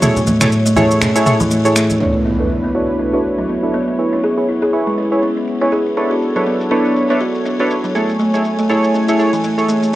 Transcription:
Already playing: C#5
0.02 A2 A3 E4 G#4 A4 C#5, mid tom, high conga, shaker
0.17 low conga, shaker
0.27 A3, high conga, shaker
0.41 A3 E4 G#4 A4 C#5, finger snap, mid tom, high conga, shaker
0.52 shaker
0.66 A3, shaker
0.76 E4 G#4 A4 C#5, high conga, low conga, shaker
0.91 shaker
1.01 C#4, finger snap, low conga, shaker
1.15 E4 G#4 A4 C#5, shaker
1.26 E4 G#4 A4 C#5, mid tom, shaker
1.40 E3, high conga, shaker
1.51 A3, shaker
1.65 E4 G#4 A4 C#5, shaker
1.76 A3, finger snap, shaker
1.90 A3, high conga, shaker
2.00 A3 B3 D4 E4 A4 B4 C#5, impact
2.25 B3
2.39 B3 D4 E4 A4 B4 C#5
2.64 B3
2.75 D4 E4 F#4 A4 B4 C#5
2.89 shaker
2.99 D4, shaker
3.14 D4 E4 F#4 A4 B4 C#5, shaker
3.24 shaker
3.38 F#3, shaker
3.49 B3, shaker
3.63 D4 E4 A4 B4 C#5, shaker
3.74 B3, shaker
3.88 B3, shaker
3.98 B3 E4 G#4 B4 C#5, shaker
4.13 C#4, shaker
4.24 G#4, shaker
4.37 E4 G#4 B4 C#5, shaker
4.48 E4, shaker
4.62 G#4, shaker
4.73 E4 G#4 B4 C#5, shaker
4.87 G#3, shaker
4.98 C#4, shaker
5.12 E4 G#4 B4 C#5, shaker
5.22 C#4, shaker
5.37 C#4, shaker
5.47 shaker
5.61 C#4 E4 G#4 B4 C#5, shaker
5.72 G#4, shaker
5.86 shaker
5.97 D4 E4 A4 B4 C#5, shaker
6.11 F#4, shaker
6.22 shaker
6.36 F#3 D4 E4 A4 B4 C#5, shaker
6.46 B3, shaker
6.61 shaker
6.71 B3 D4 E4 A4 B4 C#5, shaker
6.85 B3, shaker
6.96 shaker
7.10 B3 D4 E4 A4 B4 C#5, shaker
7.21 F#4, shaker
7.35 shaker
7.45 D4, shaker
7.60 D4 E4 F#4 A4 B4 C#5, shaker
7.70 shaker
7.84 F#3, shaker
7.95 A3 E4 G#4 A4 C#5 G#5, shaker
8.09 shaker
8.20 A3, shaker
8.34 A3 E4 G#4 A4 C#5, shaker
8.45 shaker
8.59 A3, shaker
8.69 E4 G#4 A4 C#5, shaker
8.84 shaker
8.94 C#4, shaker
9.08 E4 G#4 A4 C#5, shaker
9.19 E4 G#4 A4 C#5, shaker
9.33 E3, shaker
9.44 A3, shaker
9.58 E4 G#4 A4 C#5, shaker
9.68 A3, shaker
9.83 A3, shaker

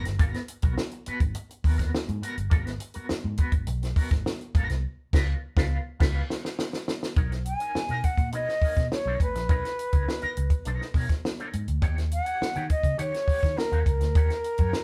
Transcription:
0.05 G1, muted clean electric guitar stroke, snare, closed hi-hat
0.19 G#1 B3 F#4 A#4, kick, closed hi-hat
0.34 muted clean electric guitar stroke, snare, closed hi-hat
0.48 muted clean electric guitar stroke, closed hi-hat
0.62 B1 B3 F#4 A#4, kick, closed hi-hat
0.78 snare
0.91 muted clean electric guitar stroke, closed hi-hat
1.06 B3 F#4 B4, muted fingered electric bass stroke, closed hi-hat
1.20 G#1, muted clean electric guitar stroke, kick, closed hi-hat
1.35 muted clean electric guitar stroke, closed hi-hat
1.50 muted clean electric guitar stroke, closed hi-hat
1.64 D#2 B3 F#4 A#4, kick, open hi-hat
1.78 B3 F#4 A#4, kick, snare, closed hi-hat
1.95 snare
2.07 G#2, muted clean electric guitar stroke, closed hi-hat
2.22 B3 F#4 A#4, closed hi-hat
2.37 G1, muted clean electric guitar stroke, closed hi-hat
2.50 G#1 B3 F#4 A#4, kick, closed hi-hat
2.66 muted clean electric guitar stroke, snare, closed hi-hat
2.79 muted clean electric guitar stroke, closed hi-hat
2.94 B3 F#4 A#4, muted fingered electric bass stroke, closed hi-hat
3.09 muted fingered electric bass stroke, snare
3.24 G#2, muted clean electric guitar stroke
3.38 B3 F#4 B4, kick, closed hi-hat
3.52 G#1, muted clean electric guitar stroke, kick, closed hi-hat
3.67 B1, muted clean electric guitar stroke, closed hi-hat
3.82 muted clean electric guitar stroke, snare, closed hi-hat
3.96 B3 F#4 A#4, kick, open hi-hat
4.11 G#1, muted clean electric guitar stroke, kick, snare, closed hi-hat
4.26 snare
4.41 muted clean electric guitar stroke, closed hi-hat
4.55 G#1 B3 F#4 A#4, kick, closed hi-hat
4.69 C2, muted clean electric guitar stroke, snare, closed hi-hat
5.13 C#2 F4 B4 D#5, kick, snare, crash
5.57 C#2 F4 B4 F5, kick, snare
6.00 C#2 F4 B4 F5, kick, snare, crash
6.30 snare
6.45 snare
6.59 snare
6.73 snare
6.88 snare
7.03 snare
7.16 B1 D#4 A#4 C#5, kick, closed hi-hat
7.31 muted clean electric guitar stroke, snare, closed hi-hat
7.45 G#5, muted clean electric guitar stroke, closed hi-hat
7.60 D#4 A#4 C#5, closed hi-hat
7.75 muted fingered electric bass stroke, muted clean electric guitar stroke, snare
7.88 B2 D#4 A#4 D#5, closed hi-hat
8.04 F#5, muted clean electric guitar stroke, kick, closed hi-hat
8.17 A#2, muted clean electric guitar stroke, kick, closed hi-hat
8.32 B2 D#4 A#4 C#5 D#5, closed hi-hat
8.49 muted clean electric guitar stroke, snare
8.62 D#4 A#4 C#5, muted fingered electric bass stroke, kick, open hi-hat
8.77 B2, kick, snare, closed hi-hat
8.92 C#5, muted clean electric guitar stroke, snare
9.05 B1 D#4 A#4 C#5
9.20 A1 B4, muted clean electric guitar stroke, kick, closed hi-hat
9.35 A#1, muted clean electric guitar stroke, snare, closed hi-hat
9.49 B1 D#4 A#4 C#5, kick, closed hi-hat
9.64 muted clean electric guitar stroke, snare, closed hi-hat
9.78 muted clean electric guitar stroke, closed hi-hat
9.93 C#2 D#4 A#4 C#5, kick, closed hi-hat
10.07 muted clean electric guitar stroke, snare
10.22 D#4 A#4 D#5, muted fingered electric bass stroke, closed hi-hat
10.37 C#2, muted clean electric guitar stroke, closed hi-hat
10.50 muted clean electric guitar stroke, kick, closed hi-hat
10.65 B1 D#4 A#4 C#5, closed hi-hat
10.80 muted clean electric guitar stroke, snare
10.94 B2 D#4 A#4 C#5, kick, open hi-hat
11.09 kick, snare, closed hi-hat
11.25 muted clean electric guitar stroke, snare
11.39 D#4 A#4 C#5, closed hi-hat
11.53 G#2, muted clean electric guitar stroke, closed hi-hat
11.68 D2, muted clean electric guitar stroke, closed hi-hat
11.82 D#2 G4 C#5 F#5, kick, closed hi-hat
11.97 muted clean electric guitar stroke, snare, closed hi-hat
12.11 F#5, muted clean electric guitar stroke, closed hi-hat
12.25 G4 C#5 F#5, closed hi-hat
12.42 muted fingered electric bass stroke, snare
12.55 D#3 G4 C#5 G5, closed hi-hat
12.69 D#5, muted clean electric guitar stroke, kick, closed hi-hat
12.83 C#3, muted clean electric guitar stroke, kick, closed hi-hat
12.98 D#3 G4 C#5 F#5, closed hi-hat
13.13 muted clean electric guitar stroke, snare, closed hi-hat
13.26 G4 C#5 F#5, muted fingered electric bass stroke, kick, open hi-hat
13.41 D#3, muted clean electric guitar stroke, kick, snare, closed hi-hat
13.56 A#4, muted clean electric guitar stroke, snare
13.72 D#2 G4 C#5 F#5, closed hi-hat
13.86 C#2 A#4, muted clean electric guitar stroke, kick, closed hi-hat
14.00 D2, muted clean electric guitar stroke, snare, closed hi-hat
14.15 D#2 G4 C#5 F#5, kick, closed hi-hat
14.30 muted clean electric guitar stroke, snare, closed hi-hat
14.44 muted clean electric guitar stroke, closed hi-hat
14.58 F#2 G4 C#5 F#5, kick, closed hi-hat
14.73 muted clean electric guitar stroke, snare

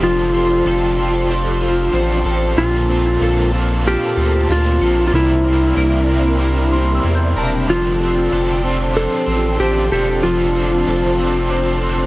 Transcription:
Already playing: F3 C4 D4 F4 G4 A4 C5 D6
0.00 F1 D3 F3 C4 F4 A4 C5
0.32 F4 A4 C5
0.37 C4
0.64 F1 D3 F3 C4 F4 A4 C5
0.96 F4 A4 C5
1.02 C4
1.28 C4 F4 C5
1.34 A4
1.60 F4 A4 C5
1.65 C4
1.92 A1 D3 F3 C4 F4 A4 C5
2.24 A1 F4 A4 C5
2.29 C4
2.56 A#1 A#2 D3 A#3 C4 D4 F4 A4
2.88 C4 F4 A4
2.93 A#3
3.20 A#1 A#2 D3 A#3 C4 F4 A4
3.52 C4 F4 A4
3.57 A#3
3.84 A#3 C4 F4 G4 F6
3.89 A4
4.16 D2 C4 F4 A4
4.21 A#3
4.48 D2 A#2 D3 A#3 C4 F4 A4
4.80 A#1 C4 F4 A4
4.85 A#3
5.07 F4
5.12 C2 C3 E3 G3 C4 E4 A#4
5.43 C4 E4 A#4
5.48 G3
5.75 C2 C3 E3 G3 C4 E4 A#4
6.07 C4 E4 A#4
6.12 G3
6.39 G3 C4 E4
6.44 A#4
6.71 C4 E4 A#4 C6
6.76 G3
6.95 E6
7.03 E2 C3 E3 G3 C4 E4 A#4
7.15 G6
7.34 E1 C4 E4 A#4 A5
7.39 G3
7.66 F1 D3 F3 C4 D4 F4 G4 A4 C5
7.98 C4 A4 C5
8.03 D4
8.30 F1 D3 F3 C4 D4 A4 C5
8.62 C4 A4 C5
8.67 D4
8.93 C4 D4 A4 C5
8.99 A4
9.26 A1 C4 A4 C5
9.31 D4
9.58 A1 D3 F3 C4 D4 G4 A4 C5
9.90 E1 C4 G4 A4 C5
9.95 D4
10.22 F1 D3 F3 C4 D4 F4 A4 C5
10.54 C4 A4 C5
10.59 D4
10.86 F1 D3 F3 C4 D4 A4 C5
11.18 C4 A4 C5
11.23 D4
11.50 C4 D4 C5
11.55 A4
11.82 C4 A4 C5
11.87 D4

